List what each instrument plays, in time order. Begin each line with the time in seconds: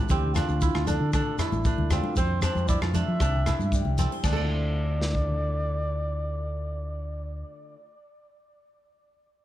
Already playing: kora C4 D4 E4
0.09 fingered electric bass D2, steel-string acoustic guitar D3, kora C4, trumpet G4, kick, low conga, shekere
0.34 kora D4, steel-string acoustic guitar D4, trumpet F4, cross-stick, closed hi-hat, low conga, low agogo, shekere
0.48 fingered electric bass D2, shekere
0.61 kora E4, kick, shekere
0.75 fingered electric bass D2, kora F4, cross-stick, low agogo
0.87 kora D4, steel-string acoustic guitar D4, trumpet A4, closed hi-hat, high conga, low conga, shekere
1.01 fingered electric bass D3
1.13 steel-string acoustic guitar A2, kora D4, trumpet A4, kick, cross-stick, low agogo, shekere
1.38 trumpet E4, kora E4, muted steel-string acoustic guitar stroke, cross-stick, closed hi-hat, low agogo, shekere
1.52 fingered electric bass A1, high conga, shekere
1.64 steel-string acoustic guitar A3, kora D4, kick, shekere
1.78 fingered electric bass D2, high conga
1.90 kora C4, steel-string acoustic guitar D4, trumpet F4, cross-stick, closed hi-hat, low conga, low agogo, shekere
2.03 high conga
2.16 fingered electric bass F2, steel-string acoustic guitar F3, kora C4, trumpet C5, kick, low conga, shekere
2.41 steel-string acoustic guitar C4, kora D4, trumpet C5, cross-stick, closed hi-hat, low conga, low agogo, shekere
2.55 fingered electric bass F2, high conga, shekere
2.68 steel-string acoustic guitar E3, kora E4, trumpet D5, kick, shekere
2.82 fingered electric bass F2, kora F4, cross-stick, low agogo
2.94 steel-string acoustic guitar D3, kora D4, trumpet E5, closed hi-hat, high conga, low conga, shekere
3.08 fingered electric bass F3
3.20 fingered electric bass C2, steel-string acoustic guitar C3, kora D4, kick, cross-stick, low agogo, shekere
3.46 kora E4, steel-string acoustic guitar E4, cross-stick, closed hi-hat, low agogo, shekere
3.59 fingered electric bass G2, high conga, shekere
3.72 steel-string acoustic guitar G3, kick, shekere
3.85 fingered electric bass C2, high conga
3.98 kora C4, steel-string acoustic guitar A4, closed hi-hat, low conga, low agogo, shekere
4.12 steel-string acoustic guitar C5
4.23 fingered electric bass D2, steel-string acoustic guitar D3, kora D4, trumpet D5, kick, crash, high conga, low agogo, shekere
4.29 steel-string acoustic guitar A3, kora A4
4.35 steel-string acoustic guitar E4, kora D5
4.40 steel-string acoustic guitar F4
4.45 steel-string acoustic guitar A4
5.01 snare
5.15 kick